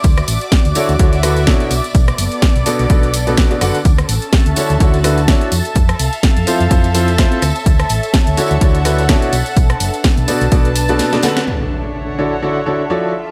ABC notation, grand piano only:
X:1
M:4/4
L:1/16
Q:"Swing 16ths" 1/4=126
K:D
V:1 name="Grand piano"
z6 [D,DEFAc] z [D,DEFAc] z [D,DEFAB] z [B,,DEFAc]2 z2 | z6 [B,,DFABd] z [B,,DFABd] z2 [B,,DFABd]2 [B,,DFABd] [D,DFABf] z | z6 [D,DEFAc] z [D,DEFAc] z [D,DEFAB] z [DEFAc]2 z2 | z6 [=F,=CE=FA=c] z [F,CEFAc] z [F,CEFAc] z [CEFAc]2 z2 |
z6 [D,DEFAc] z [D,DEFAc] z [D,DEFAB] z [B,,DEFAc]2 z2 | z6 [B,,DFABd] z [B,,DFABd] z2 [B,,DFABd]2 [B,,DFABd] [D,DFABf] z | z6 [D,EFAcd] z [D,EFAcd] z [D,EFAcd] z [=F,E^FAcd]2 z2 |]